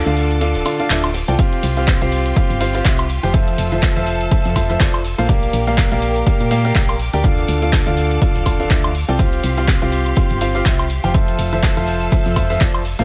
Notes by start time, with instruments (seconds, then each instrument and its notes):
Already playing: string section F4 A4 D6
0.06 fm bass D2, grand piano D3 F4 A4 D5 F5, closed hi-hat, shaker
0.17 snare, open hi-hat, ride
0.31 closed hi-hat, shaker
0.41 grand piano D3 F4 A4 D5 F5, closed hi-hat, ride, shaker
0.55 fm bass D1, snare, closed hi-hat, shaker
0.65 grand piano D3 F4 A4 D5 F5, open hi-hat, ride, high woodblock
0.79 grand piano D3 F4 A4 D5 F5, closed hi-hat, shaker
0.90 fm bass D1, grand piano D3 F4 A4 D5 E5, clap, closed hi-hat, ride, shaker
1.04 snare, closed hi-hat, high woodblock, shaker
1.14 snare, open hi-hat, ride
1.28 fm bass C2, grand piano C4 F4 A4 D5 G5, closed hi-hat, shaker
1.39 grand piano C4 F4 G4 C5 F5, string section G4 C6, kick, closed hi-hat, ride, shaker
1.53 closed hi-hat, shaker
1.63 fm bass C2, snare, open hi-hat, ride
1.77 grand piano C4 F4 G4 C5 F5, snare, closed hi-hat, shaker
1.87 kick, snare, clap, closed hi-hat, ride, shaker
2.01 fm bass C2, grand piano C4 F4 G4 C5 F5, closed hi-hat, shaker
2.12 open hi-hat, ride
2.26 closed hi-hat, shaker
2.36 grand piano C4 F4 G4 C5 F5, kick, closed hi-hat, ride, shaker
2.50 fm bass G1, closed hi-hat, shaker
2.60 grand piano C4 F4 G4 C5 F5, open hi-hat, ride
2.74 grand piano C4 F4 G4 C5 F5, snare, closed hi-hat, shaker
2.84 fm bass C2, grand piano C4 F4 G4 C5 E5, kick, snare, clap, closed hi-hat, ride, shaker
2.99 closed hi-hat, high woodblock, shaker
3.09 open hi-hat, ride
3.23 fm bass F1, grand piano F3 F4 G4 C5 G5, snare, closed hi-hat, shaker
3.34 grand piano F3 F4 A4 C5 E5, string section A4 E6, kick, closed hi-hat, ride, shaker
3.48 closed hi-hat, shaker
3.58 fm bass F1, open hi-hat, ride
3.72 grand piano F3 F4 A4 C5 E5, closed hi-hat, shaker
3.82 kick, snare, clap, closed hi-hat, ride, shaker
3.97 fm bass F1, grand piano F3 F4 A4 C5 E5, closed hi-hat, shaker
4.06 snare, open hi-hat, ride
4.21 closed hi-hat, shaker
4.31 grand piano F3 F4 A4 C5 E5, kick, closed hi-hat, ride, shaker
4.45 fm bass F2, snare, closed hi-hat, shaker
4.56 grand piano F3 F4 A4 C5 E5, kick, open hi-hat, ride, high woodblock
4.70 grand piano F3 F4 A4 C5 E5, snare, closed hi-hat, shaker
4.80 fm bass F1, grand piano F3 F4 A4 C5 D5, kick, snare, clap, closed hi-hat, ride, shaker
4.93 closed hi-hat, ride, high woodblock, shaker
5.04 open hi-hat
5.18 fm bass A#1, grand piano A#3 F4 A4 C5 F5, closed hi-hat, shaker
5.29 grand piano A#3 G4 A#4 D5 F5, string section A#4 G5 D6, kick, closed hi-hat, ride, shaker
5.43 closed hi-hat, shaker
5.53 fm bass A#1, snare, open hi-hat, ride
5.67 grand piano A#3 G4 A#4 D5 F5, snare, closed hi-hat, shaker
5.77 kick, snare, clap, closed hi-hat, ride, shaker
5.91 fm bass A#1, grand piano A#3 G4 A#4 D5 F5, closed hi-hat, shaker
6.02 open hi-hat, ride
6.16 closed hi-hat, shaker
6.26 grand piano A#3 G4 A#4 D5 F5, kick, closed hi-hat, ride, shaker
6.40 fm bass A#2, closed hi-hat, shaker
6.51 grand piano A#3 G4 A#4 D5 F5, open hi-hat, ride
6.65 grand piano A#3 G4 A#4 D5 F5, snare, closed hi-hat, shaker
6.75 fm bass A#1, grand piano A#3 G4 D5 F5, kick, snare, clap, closed hi-hat, ride, shaker
6.89 closed hi-hat, high woodblock, shaker
7.00 open hi-hat, ride
7.13 fm bass D2, grand piano G4 A#4 D5 G5, snare, closed hi-hat, shaker
7.24 grand piano D3 F4 A4 D5 F5, string section A4 F5, kick, closed hi-hat, ride, shaker
7.38 closed hi-hat, shaker
7.48 fm bass D2, open hi-hat, ride
7.62 grand piano D3 F4 A4 D5 F5, closed hi-hat, shaker
7.73 kick, snare, clap, closed hi-hat, ride, shaker
7.87 fm bass D2, grand piano D3 F4 A4 D5 F5, closed hi-hat, shaker
7.97 snare, open hi-hat, ride
8.11 closed hi-hat, shaker
8.22 grand piano D3 F4 A4 D5 F5, kick, closed hi-hat, ride, shaker
8.35 fm bass D1, snare, closed hi-hat, shaker
8.45 grand piano D3 F4 A4 D5 F5, kick, open hi-hat, ride, high woodblock
8.60 grand piano D3 F4 A4 D5 F5, snare, closed hi-hat, shaker
8.70 fm bass D2, grand piano D3 F4 A4 D5 E5, kick, snare, clap, closed hi-hat, ride, shaker
8.84 closed hi-hat, ride, high woodblock, shaker
8.95 open hi-hat
9.09 fm bass C2, grand piano C4 F4 A4 D5 G5, closed hi-hat, shaker
9.19 grand piano C4 F4 G4 C5 F5, string section G4 C6, kick, closed hi-hat, ride, shaker
9.33 closed hi-hat, shaker
9.44 fm bass C2, snare, open hi-hat, ride
9.57 grand piano C4 F4 G4 C5 F5, snare, closed hi-hat, shaker
9.67 kick, snare, clap, closed hi-hat, ride, shaker
9.82 fm bass C2, grand piano C4 F4 G4 C5 F5, closed hi-hat, shaker
9.92 open hi-hat, ride
10.06 closed hi-hat, shaker
10.16 grand piano C4 F4 G4 C5 F5, kick, closed hi-hat, ride, shaker
10.30 fm bass G1, closed hi-hat, shaker
10.41 grand piano C4 F4 G4 C5 F5, open hi-hat, ride
10.55 grand piano C4 F4 G4 C5 F5, snare, closed hi-hat, shaker
10.66 fm bass C2, grand piano C4 F4 G4 C5 E5, kick, snare, clap, closed hi-hat, ride, shaker
10.79 closed hi-hat, high woodblock, shaker
10.90 open hi-hat, ride
11.04 fm bass F1, grand piano F3 F4 G4 C5 G5, snare, closed hi-hat, shaker
11.14 grand piano F3 F4 A4 C5 E5, string section F4 A4 E6, kick, closed hi-hat, ride, shaker
11.28 closed hi-hat, shaker
11.39 fm bass F1, open hi-hat, ride
11.53 grand piano F3 F4 A4 C5 E5, closed hi-hat, shaker
11.63 kick, snare, clap, closed hi-hat, ride, shaker
11.77 fm bass F1, grand piano F3 F4 A4 C5 E5, closed hi-hat, shaker
11.87 snare, open hi-hat, ride
12.01 closed hi-hat, shaker
12.12 grand piano F3 F4 A4 C5 E5, kick, closed hi-hat, ride, shaker
12.26 fm bass F2, snare, closed hi-hat, shaker
12.36 grand piano F3 F4 A4 C5 E5, kick, open hi-hat, ride, high woodblock
12.50 grand piano F3 F4 A4 C5 E5, snare, closed hi-hat, shaker
12.61 fm bass F1, grand piano F3 F4 A4 C5 D5, kick, snare, clap, closed hi-hat, ride, shaker
12.74 closed hi-hat, ride, high woodblock, shaker
12.85 open hi-hat
12.99 fm bass A#1, grand piano A#3 F4 A4 C5 F5, closed hi-hat, shaker